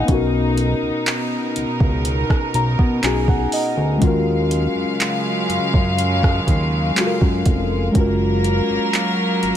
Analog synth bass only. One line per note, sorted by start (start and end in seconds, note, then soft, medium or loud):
0.08 0.74 B1 loud
0.82 0.92 C#2 soft
1.56 1.66 C#2 soft
1.80 2.25 C#2 medium
2.54 2.76 B1 medium
2.79 3.01 B2 loud
3.03 3.48 B1 loud
3.77 3.99 D2 medium
4.02 4.68 D#2 loud
4.75 4.85 F#2 soft
5.49 5.59 F#2 soft
5.74 6.40 F#2 medium
6.47 6.92 D#2 medium
7.21 7.44 F#2 medium
7.46 7.90 F1 medium
7.95 8.61 F#1 loud
8.69 8.79 G#1 soft
9.43 9.53 G#1 soft